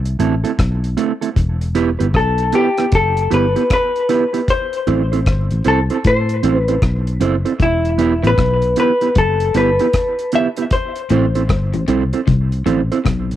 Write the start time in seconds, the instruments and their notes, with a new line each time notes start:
Already playing: fingered electric bass C2
0.05 closed hi-hat
0.19 fingered electric bass A1, clean electric guitar A3 C4 E4 A4, closed hi-hat
0.43 clean electric guitar A3 C4 E4 A4, closed hi-hat
0.59 fingered electric bass B1, kick, cross-stick, closed hi-hat
0.84 closed hi-hat
0.97 clean electric guitar A3 C4 E4 A4, closed hi-hat
1.21 clean electric guitar A3 C4 E4 A4, closed hi-hat
1.36 fingered electric bass E1, kick, closed hi-hat
1.61 closed hi-hat
1.75 clean electric guitar B3 E4 G4 B4, closed hi-hat
1.99 fingered electric bass G1, clean electric guitar B3 E4 G4 B4, closed hi-hat
2.14 fingered electric bass B1, hollow-body jazz guitar A4, kick, cross-stick, closed hi-hat
2.38 closed hi-hat
2.53 clean electric guitar B3 E4 G4 B4, hollow-body jazz guitar G4, closed hi-hat
2.78 clean electric guitar B3 E4 G4 B4, cross-stick, closed hi-hat
2.92 fingered electric bass F#1, hollow-body jazz guitar A4, kick, closed hi-hat
3.17 closed hi-hat
3.31 fingered electric bass G1, clean electric guitar B3 E4 G4 B4, hollow-body jazz guitar B4, closed hi-hat
3.56 clean electric guitar B3 E4 G4 B4, closed hi-hat
3.70 hollow-body jazz guitar B4, kick, cross-stick, closed hi-hat
3.96 closed hi-hat
4.09 clean electric guitar B3 E4 G4 B4, closed hi-hat
4.33 clean electric guitar B3 E4 G4 B4, closed hi-hat
4.48 hollow-body jazz guitar C5, kick, closed hi-hat
4.73 closed hi-hat
4.87 fingered electric bass A1, clean electric guitar C4 E4 A4 C5, closed hi-hat
5.12 clean electric guitar C4 E4 A4 C5, closed hi-hat
5.26 fingered electric bass G1, kick, cross-stick, closed hi-hat
5.50 fingered electric bass A1, closed hi-hat
5.64 fingered electric bass C2, clean electric guitar C4 E4 A4 C5, hollow-body jazz guitar A4, closed hi-hat
5.90 clean electric guitar C4 E4 A4 C5, closed hi-hat
6.04 fingered electric bass A2, hollow-body jazz guitar C5, kick, closed hi-hat
6.29 closed hi-hat
6.43 fingered electric bass A1, clean electric guitar C4 E4 A4 C5, closed hi-hat
6.57 hollow-body jazz guitar B4
6.68 clean electric guitar C4 E4 A4 C5, closed hi-hat
6.82 fingered electric bass B1, kick, cross-stick, closed hi-hat
7.07 closed hi-hat
7.20 fingered electric bass F#1, clean electric guitar C4 E4 A4 C5, closed hi-hat
7.45 clean electric guitar C4 E4 A4 C5, closed hi-hat
7.60 fingered electric bass E1, clean electric guitar E2, hollow-body jazz guitar E4, kick, closed hi-hat
7.85 closed hi-hat
7.98 clean electric guitar B3 E4 G4 B4, closed hi-hat
8.23 fingered electric bass A1, clean electric guitar A2 B3 E4 G4 B4, closed hi-hat
8.27 hollow-body jazz guitar B4
8.38 fingered electric bass B1, clean electric guitar B2, kick, cross-stick, closed hi-hat
8.62 closed hi-hat
8.76 clean electric guitar B3 E4 G4 B4, hollow-body jazz guitar B4, closed hi-hat
9.01 clean electric guitar B3 E4 G4 B4, closed hi-hat
9.15 fingered electric bass F#1, clean electric guitar F#2, hollow-body jazz guitar A4, kick, closed hi-hat
9.40 closed hi-hat
9.54 fingered electric bass G1, clean electric guitar G2 B3 E4 G4 B4, hollow-body jazz guitar B4, closed hi-hat
9.79 clean electric guitar B3 E4 G4 B4, closed hi-hat
9.93 kick, cross-stick, closed hi-hat
10.19 closed hi-hat
10.32 clean electric guitar B3 E4 G4 B4, hollow-body jazz guitar E5, closed hi-hat
10.56 clean electric guitar B3 E4 G4 B4, closed hi-hat
10.71 hollow-body jazz guitar C5, kick, closed hi-hat
10.96 closed hi-hat
11.10 fingered electric bass A1, clean electric guitar A2 C4 E4 A4 C5, closed hi-hat
11.35 clean electric guitar C4 E4 A4 C5, closed hi-hat
11.49 fingered electric bass G1, clean electric guitar G2, kick, cross-stick, closed hi-hat
11.73 fingered electric bass A1, clean electric guitar A2, closed hi-hat
11.88 fingered electric bass C2, clean electric guitar C3 C4 E4 A4 C5, closed hi-hat
12.13 clean electric guitar C4 E4 A4 C5, closed hi-hat
12.27 fingered electric bass C2, clean electric guitar C3, kick, closed hi-hat
12.52 closed hi-hat
12.66 fingered electric bass A1, clean electric guitar A2 C4 E4 A4 C5, closed hi-hat
12.92 clean electric guitar C4 E4 A4 C5, closed hi-hat
13.05 fingered electric bass B1, clean electric guitar B2, kick, cross-stick, closed hi-hat
13.31 closed hi-hat